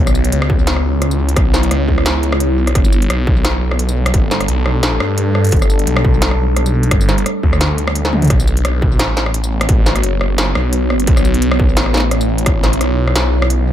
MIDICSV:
0, 0, Header, 1, 4, 480
1, 0, Start_track
1, 0, Key_signature, 2, "minor"
1, 0, Tempo, 346821
1, 1888, Time_signature, 4, 2, 24, 8
1, 19000, End_track
2, 0, Start_track
2, 0, Title_t, "Ambient pad"
2, 0, Program_c, 0, 92
2, 0, Note_on_c, 0, 59, 80
2, 0, Note_on_c, 0, 64, 74
2, 0, Note_on_c, 0, 73, 87
2, 3753, Note_off_c, 0, 59, 0
2, 3753, Note_off_c, 0, 73, 0
2, 3769, Note_off_c, 0, 64, 0
2, 3809, Note_on_c, 0, 55, 81
2, 3810, Note_on_c, 0, 62, 73
2, 3811, Note_on_c, 0, 69, 88
2, 11433, Note_off_c, 0, 55, 0
2, 11433, Note_off_c, 0, 62, 0
2, 11434, Note_off_c, 0, 69, 0
2, 11485, Note_on_c, 0, 73, 89
2, 11487, Note_on_c, 0, 59, 83
2, 11488, Note_on_c, 0, 66, 75
2, 15289, Note_off_c, 0, 66, 0
2, 15331, Note_on_c, 0, 64, 74
2, 19000, Note_off_c, 0, 59, 0
2, 19000, Note_off_c, 0, 64, 0
2, 19000, Note_off_c, 0, 73, 0
2, 19000, End_track
3, 0, Start_track
3, 0, Title_t, "Detuned saw bass"
3, 0, Program_c, 1, 39
3, 0, Note_on_c, 1, 35, 102
3, 431, Note_off_c, 1, 35, 0
3, 451, Note_on_c, 1, 37, 96
3, 1872, Note_off_c, 1, 37, 0
3, 1888, Note_on_c, 1, 35, 100
3, 2350, Note_off_c, 1, 35, 0
3, 2367, Note_on_c, 1, 37, 96
3, 3363, Note_off_c, 1, 37, 0
3, 3363, Note_on_c, 1, 36, 96
3, 3790, Note_off_c, 1, 36, 0
3, 3808, Note_on_c, 1, 31, 102
3, 4271, Note_off_c, 1, 31, 0
3, 4286, Note_on_c, 1, 35, 92
3, 5709, Note_off_c, 1, 35, 0
3, 5727, Note_on_c, 1, 31, 101
3, 6190, Note_off_c, 1, 31, 0
3, 6205, Note_on_c, 1, 35, 95
3, 6909, Note_off_c, 1, 35, 0
3, 6927, Note_on_c, 1, 43, 100
3, 7630, Note_off_c, 1, 43, 0
3, 7645, Note_on_c, 1, 31, 99
3, 8109, Note_off_c, 1, 31, 0
3, 8126, Note_on_c, 1, 35, 96
3, 9549, Note_off_c, 1, 35, 0
3, 9568, Note_on_c, 1, 31, 102
3, 10030, Note_off_c, 1, 31, 0
3, 10289, Note_on_c, 1, 38, 98
3, 11471, Note_off_c, 1, 38, 0
3, 11490, Note_on_c, 1, 35, 100
3, 12431, Note_off_c, 1, 35, 0
3, 12449, Note_on_c, 1, 33, 94
3, 13871, Note_off_c, 1, 33, 0
3, 13887, Note_on_c, 1, 30, 94
3, 14590, Note_off_c, 1, 30, 0
3, 14610, Note_on_c, 1, 35, 98
3, 15312, Note_off_c, 1, 35, 0
3, 15328, Note_on_c, 1, 35, 101
3, 16271, Note_off_c, 1, 35, 0
3, 16288, Note_on_c, 1, 33, 96
3, 17711, Note_off_c, 1, 33, 0
3, 17726, Note_on_c, 1, 35, 96
3, 19000, Note_off_c, 1, 35, 0
3, 19000, End_track
4, 0, Start_track
4, 0, Title_t, "Drums"
4, 96, Note_on_c, 9, 37, 53
4, 96, Note_on_c, 9, 54, 35
4, 207, Note_off_c, 9, 54, 0
4, 207, Note_on_c, 9, 54, 36
4, 235, Note_off_c, 9, 37, 0
4, 339, Note_on_c, 9, 42, 38
4, 345, Note_off_c, 9, 54, 0
4, 448, Note_off_c, 9, 42, 0
4, 448, Note_on_c, 9, 42, 69
4, 580, Note_on_c, 9, 37, 80
4, 587, Note_off_c, 9, 42, 0
4, 688, Note_on_c, 9, 36, 111
4, 719, Note_off_c, 9, 37, 0
4, 826, Note_off_c, 9, 36, 0
4, 928, Note_on_c, 9, 38, 123
4, 928, Note_on_c, 9, 42, 83
4, 1058, Note_on_c, 9, 37, 51
4, 1067, Note_off_c, 9, 38, 0
4, 1067, Note_off_c, 9, 42, 0
4, 1196, Note_off_c, 9, 37, 0
4, 1408, Note_on_c, 9, 37, 51
4, 1408, Note_on_c, 9, 42, 68
4, 1540, Note_on_c, 9, 54, 35
4, 1546, Note_off_c, 9, 37, 0
4, 1546, Note_off_c, 9, 42, 0
4, 1678, Note_off_c, 9, 54, 0
4, 1780, Note_on_c, 9, 42, 37
4, 1888, Note_on_c, 9, 36, 125
4, 1889, Note_off_c, 9, 42, 0
4, 1889, Note_on_c, 9, 37, 74
4, 1889, Note_on_c, 9, 42, 77
4, 2026, Note_off_c, 9, 36, 0
4, 2027, Note_off_c, 9, 37, 0
4, 2027, Note_off_c, 9, 42, 0
4, 2129, Note_on_c, 9, 38, 65
4, 2129, Note_on_c, 9, 54, 36
4, 2259, Note_on_c, 9, 42, 37
4, 2267, Note_off_c, 9, 38, 0
4, 2267, Note_off_c, 9, 54, 0
4, 2368, Note_off_c, 9, 42, 0
4, 2368, Note_on_c, 9, 37, 51
4, 2368, Note_on_c, 9, 42, 64
4, 2506, Note_off_c, 9, 37, 0
4, 2506, Note_off_c, 9, 42, 0
4, 2608, Note_on_c, 9, 36, 63
4, 2740, Note_on_c, 9, 37, 50
4, 2746, Note_off_c, 9, 36, 0
4, 2848, Note_on_c, 9, 38, 123
4, 2848, Note_on_c, 9, 42, 78
4, 2878, Note_off_c, 9, 37, 0
4, 2986, Note_off_c, 9, 38, 0
4, 2986, Note_off_c, 9, 42, 0
4, 3087, Note_on_c, 9, 42, 38
4, 3218, Note_on_c, 9, 37, 77
4, 3226, Note_off_c, 9, 42, 0
4, 3327, Note_on_c, 9, 42, 65
4, 3356, Note_off_c, 9, 37, 0
4, 3465, Note_off_c, 9, 42, 0
4, 3700, Note_on_c, 9, 37, 51
4, 3700, Note_on_c, 9, 42, 36
4, 3808, Note_on_c, 9, 36, 120
4, 3809, Note_off_c, 9, 37, 0
4, 3809, Note_off_c, 9, 42, 0
4, 3809, Note_on_c, 9, 37, 50
4, 3809, Note_on_c, 9, 42, 75
4, 3939, Note_on_c, 9, 54, 37
4, 3947, Note_off_c, 9, 36, 0
4, 3948, Note_off_c, 9, 37, 0
4, 3948, Note_off_c, 9, 42, 0
4, 4050, Note_off_c, 9, 54, 0
4, 4050, Note_on_c, 9, 54, 38
4, 4181, Note_on_c, 9, 42, 35
4, 4188, Note_off_c, 9, 54, 0
4, 4291, Note_off_c, 9, 42, 0
4, 4291, Note_on_c, 9, 37, 75
4, 4291, Note_on_c, 9, 42, 63
4, 4429, Note_off_c, 9, 37, 0
4, 4429, Note_off_c, 9, 42, 0
4, 4528, Note_on_c, 9, 36, 104
4, 4666, Note_off_c, 9, 36, 0
4, 4769, Note_on_c, 9, 37, 51
4, 4769, Note_on_c, 9, 38, 118
4, 4769, Note_on_c, 9, 42, 77
4, 4908, Note_off_c, 9, 37, 0
4, 4908, Note_off_c, 9, 38, 0
4, 4908, Note_off_c, 9, 42, 0
4, 5141, Note_on_c, 9, 37, 52
4, 5249, Note_on_c, 9, 42, 63
4, 5279, Note_off_c, 9, 37, 0
4, 5379, Note_on_c, 9, 54, 37
4, 5387, Note_off_c, 9, 42, 0
4, 5518, Note_off_c, 9, 54, 0
4, 5619, Note_on_c, 9, 37, 75
4, 5619, Note_on_c, 9, 42, 35
4, 5727, Note_on_c, 9, 36, 115
4, 5728, Note_off_c, 9, 42, 0
4, 5728, Note_on_c, 9, 42, 74
4, 5757, Note_off_c, 9, 37, 0
4, 5865, Note_off_c, 9, 36, 0
4, 5866, Note_off_c, 9, 42, 0
4, 5968, Note_on_c, 9, 38, 61
4, 5968, Note_on_c, 9, 54, 39
4, 6097, Note_on_c, 9, 37, 53
4, 6097, Note_on_c, 9, 42, 36
4, 6106, Note_off_c, 9, 38, 0
4, 6106, Note_off_c, 9, 54, 0
4, 6205, Note_off_c, 9, 42, 0
4, 6205, Note_on_c, 9, 42, 62
4, 6235, Note_off_c, 9, 37, 0
4, 6344, Note_off_c, 9, 42, 0
4, 6444, Note_on_c, 9, 37, 54
4, 6583, Note_off_c, 9, 37, 0
4, 6684, Note_on_c, 9, 38, 116
4, 6684, Note_on_c, 9, 42, 76
4, 6823, Note_off_c, 9, 38, 0
4, 6823, Note_off_c, 9, 42, 0
4, 6925, Note_on_c, 9, 37, 83
4, 7063, Note_off_c, 9, 37, 0
4, 7164, Note_on_c, 9, 42, 64
4, 7303, Note_off_c, 9, 42, 0
4, 7404, Note_on_c, 9, 37, 54
4, 7536, Note_on_c, 9, 42, 34
4, 7543, Note_off_c, 9, 37, 0
4, 7566, Note_off_c, 9, 42, 0
4, 7566, Note_on_c, 9, 42, 28
4, 7597, Note_off_c, 9, 42, 0
4, 7597, Note_on_c, 9, 42, 22
4, 7628, Note_off_c, 9, 42, 0
4, 7628, Note_on_c, 9, 42, 18
4, 7643, Note_off_c, 9, 42, 0
4, 7643, Note_on_c, 9, 42, 76
4, 7646, Note_on_c, 9, 36, 116
4, 7663, Note_off_c, 9, 42, 0
4, 7663, Note_on_c, 9, 42, 15
4, 7778, Note_on_c, 9, 37, 55
4, 7778, Note_on_c, 9, 54, 39
4, 7784, Note_off_c, 9, 36, 0
4, 7801, Note_off_c, 9, 42, 0
4, 7886, Note_off_c, 9, 54, 0
4, 7886, Note_on_c, 9, 54, 40
4, 7916, Note_off_c, 9, 37, 0
4, 8016, Note_on_c, 9, 42, 36
4, 8024, Note_off_c, 9, 54, 0
4, 8125, Note_off_c, 9, 42, 0
4, 8125, Note_on_c, 9, 42, 66
4, 8256, Note_on_c, 9, 37, 83
4, 8264, Note_off_c, 9, 42, 0
4, 8367, Note_on_c, 9, 36, 99
4, 8395, Note_off_c, 9, 37, 0
4, 8505, Note_off_c, 9, 36, 0
4, 8606, Note_on_c, 9, 38, 115
4, 8606, Note_on_c, 9, 42, 79
4, 8737, Note_on_c, 9, 37, 55
4, 8744, Note_off_c, 9, 38, 0
4, 8744, Note_off_c, 9, 42, 0
4, 8875, Note_off_c, 9, 37, 0
4, 9086, Note_on_c, 9, 37, 53
4, 9086, Note_on_c, 9, 42, 63
4, 9217, Note_on_c, 9, 54, 39
4, 9224, Note_off_c, 9, 37, 0
4, 9224, Note_off_c, 9, 42, 0
4, 9355, Note_off_c, 9, 54, 0
4, 9456, Note_on_c, 9, 42, 35
4, 9567, Note_off_c, 9, 42, 0
4, 9567, Note_on_c, 9, 37, 84
4, 9567, Note_on_c, 9, 42, 80
4, 9568, Note_on_c, 9, 36, 118
4, 9698, Note_on_c, 9, 54, 38
4, 9706, Note_off_c, 9, 36, 0
4, 9706, Note_off_c, 9, 37, 0
4, 9706, Note_off_c, 9, 42, 0
4, 9808, Note_off_c, 9, 54, 0
4, 9808, Note_on_c, 9, 38, 62
4, 9808, Note_on_c, 9, 54, 38
4, 9937, Note_on_c, 9, 42, 38
4, 9946, Note_off_c, 9, 38, 0
4, 9946, Note_off_c, 9, 54, 0
4, 10048, Note_off_c, 9, 42, 0
4, 10048, Note_on_c, 9, 37, 54
4, 10048, Note_on_c, 9, 42, 67
4, 10186, Note_off_c, 9, 37, 0
4, 10186, Note_off_c, 9, 42, 0
4, 10289, Note_on_c, 9, 36, 59
4, 10420, Note_on_c, 9, 37, 55
4, 10427, Note_off_c, 9, 36, 0
4, 10529, Note_on_c, 9, 38, 115
4, 10529, Note_on_c, 9, 42, 79
4, 10559, Note_off_c, 9, 37, 0
4, 10667, Note_off_c, 9, 38, 0
4, 10667, Note_off_c, 9, 42, 0
4, 10769, Note_on_c, 9, 42, 38
4, 10899, Note_on_c, 9, 37, 82
4, 10908, Note_off_c, 9, 42, 0
4, 11010, Note_on_c, 9, 42, 66
4, 11037, Note_off_c, 9, 37, 0
4, 11139, Note_on_c, 9, 38, 53
4, 11148, Note_off_c, 9, 42, 0
4, 11248, Note_on_c, 9, 47, 82
4, 11278, Note_off_c, 9, 38, 0
4, 11380, Note_on_c, 9, 42, 34
4, 11380, Note_on_c, 9, 45, 79
4, 11387, Note_off_c, 9, 47, 0
4, 11410, Note_off_c, 9, 42, 0
4, 11410, Note_on_c, 9, 42, 29
4, 11452, Note_off_c, 9, 42, 0
4, 11452, Note_on_c, 9, 42, 24
4, 11489, Note_off_c, 9, 42, 0
4, 11489, Note_on_c, 9, 36, 122
4, 11489, Note_on_c, 9, 37, 56
4, 11489, Note_on_c, 9, 42, 80
4, 11518, Note_off_c, 9, 45, 0
4, 11621, Note_on_c, 9, 54, 38
4, 11628, Note_off_c, 9, 36, 0
4, 11628, Note_off_c, 9, 37, 0
4, 11628, Note_off_c, 9, 42, 0
4, 11729, Note_off_c, 9, 54, 0
4, 11729, Note_on_c, 9, 54, 37
4, 11860, Note_on_c, 9, 42, 38
4, 11868, Note_off_c, 9, 54, 0
4, 11969, Note_off_c, 9, 42, 0
4, 11969, Note_on_c, 9, 37, 84
4, 11969, Note_on_c, 9, 42, 70
4, 12108, Note_off_c, 9, 37, 0
4, 12108, Note_off_c, 9, 42, 0
4, 12209, Note_on_c, 9, 36, 105
4, 12347, Note_off_c, 9, 36, 0
4, 12448, Note_on_c, 9, 37, 57
4, 12448, Note_on_c, 9, 38, 119
4, 12448, Note_on_c, 9, 42, 86
4, 12586, Note_off_c, 9, 37, 0
4, 12586, Note_off_c, 9, 38, 0
4, 12586, Note_off_c, 9, 42, 0
4, 12689, Note_on_c, 9, 38, 65
4, 12820, Note_on_c, 9, 37, 55
4, 12828, Note_off_c, 9, 38, 0
4, 12930, Note_on_c, 9, 42, 68
4, 12958, Note_off_c, 9, 37, 0
4, 13060, Note_on_c, 9, 54, 38
4, 13068, Note_off_c, 9, 42, 0
4, 13198, Note_off_c, 9, 54, 0
4, 13299, Note_on_c, 9, 37, 82
4, 13299, Note_on_c, 9, 42, 39
4, 13408, Note_off_c, 9, 42, 0
4, 13408, Note_on_c, 9, 42, 83
4, 13409, Note_on_c, 9, 36, 127
4, 13438, Note_off_c, 9, 37, 0
4, 13546, Note_off_c, 9, 42, 0
4, 13547, Note_off_c, 9, 36, 0
4, 13650, Note_on_c, 9, 38, 64
4, 13650, Note_on_c, 9, 54, 36
4, 13778, Note_on_c, 9, 37, 53
4, 13778, Note_on_c, 9, 42, 39
4, 13788, Note_off_c, 9, 38, 0
4, 13788, Note_off_c, 9, 54, 0
4, 13888, Note_off_c, 9, 42, 0
4, 13888, Note_on_c, 9, 42, 68
4, 13917, Note_off_c, 9, 37, 0
4, 14027, Note_off_c, 9, 42, 0
4, 14129, Note_on_c, 9, 37, 57
4, 14267, Note_off_c, 9, 37, 0
4, 14368, Note_on_c, 9, 38, 123
4, 14368, Note_on_c, 9, 42, 83
4, 14506, Note_off_c, 9, 38, 0
4, 14506, Note_off_c, 9, 42, 0
4, 14606, Note_on_c, 9, 37, 83
4, 14744, Note_off_c, 9, 37, 0
4, 14846, Note_on_c, 9, 42, 68
4, 14985, Note_off_c, 9, 42, 0
4, 15088, Note_on_c, 9, 37, 56
4, 15218, Note_on_c, 9, 42, 38
4, 15226, Note_off_c, 9, 37, 0
4, 15326, Note_off_c, 9, 42, 0
4, 15326, Note_on_c, 9, 42, 79
4, 15328, Note_on_c, 9, 36, 127
4, 15459, Note_on_c, 9, 37, 51
4, 15459, Note_on_c, 9, 54, 35
4, 15464, Note_off_c, 9, 42, 0
4, 15467, Note_off_c, 9, 36, 0
4, 15568, Note_off_c, 9, 54, 0
4, 15568, Note_on_c, 9, 54, 35
4, 15597, Note_off_c, 9, 37, 0
4, 15699, Note_on_c, 9, 42, 38
4, 15706, Note_off_c, 9, 54, 0
4, 15806, Note_off_c, 9, 42, 0
4, 15806, Note_on_c, 9, 42, 68
4, 15937, Note_on_c, 9, 37, 78
4, 15944, Note_off_c, 9, 42, 0
4, 16048, Note_on_c, 9, 36, 109
4, 16075, Note_off_c, 9, 37, 0
4, 16186, Note_off_c, 9, 36, 0
4, 16286, Note_on_c, 9, 38, 127
4, 16286, Note_on_c, 9, 42, 81
4, 16415, Note_on_c, 9, 37, 52
4, 16425, Note_off_c, 9, 38, 0
4, 16425, Note_off_c, 9, 42, 0
4, 16526, Note_on_c, 9, 38, 65
4, 16553, Note_off_c, 9, 37, 0
4, 16569, Note_off_c, 9, 38, 0
4, 16569, Note_on_c, 9, 38, 52
4, 16605, Note_off_c, 9, 38, 0
4, 16605, Note_on_c, 9, 38, 45
4, 16744, Note_off_c, 9, 38, 0
4, 16765, Note_on_c, 9, 37, 50
4, 16765, Note_on_c, 9, 42, 67
4, 16896, Note_on_c, 9, 54, 34
4, 16903, Note_off_c, 9, 37, 0
4, 16903, Note_off_c, 9, 42, 0
4, 17034, Note_off_c, 9, 54, 0
4, 17138, Note_on_c, 9, 42, 38
4, 17247, Note_off_c, 9, 42, 0
4, 17247, Note_on_c, 9, 36, 124
4, 17247, Note_on_c, 9, 37, 76
4, 17247, Note_on_c, 9, 42, 77
4, 17385, Note_off_c, 9, 37, 0
4, 17385, Note_off_c, 9, 42, 0
4, 17386, Note_off_c, 9, 36, 0
4, 17487, Note_on_c, 9, 38, 66
4, 17487, Note_on_c, 9, 54, 37
4, 17619, Note_on_c, 9, 42, 37
4, 17626, Note_off_c, 9, 38, 0
4, 17626, Note_off_c, 9, 54, 0
4, 17727, Note_off_c, 9, 42, 0
4, 17727, Note_on_c, 9, 37, 51
4, 17727, Note_on_c, 9, 42, 66
4, 17865, Note_off_c, 9, 37, 0
4, 17865, Note_off_c, 9, 42, 0
4, 18096, Note_on_c, 9, 37, 51
4, 18207, Note_on_c, 9, 38, 124
4, 18207, Note_on_c, 9, 42, 82
4, 18235, Note_off_c, 9, 37, 0
4, 18345, Note_off_c, 9, 38, 0
4, 18345, Note_off_c, 9, 42, 0
4, 18576, Note_on_c, 9, 37, 76
4, 18687, Note_on_c, 9, 42, 64
4, 18715, Note_off_c, 9, 37, 0
4, 18825, Note_off_c, 9, 42, 0
4, 19000, End_track
0, 0, End_of_file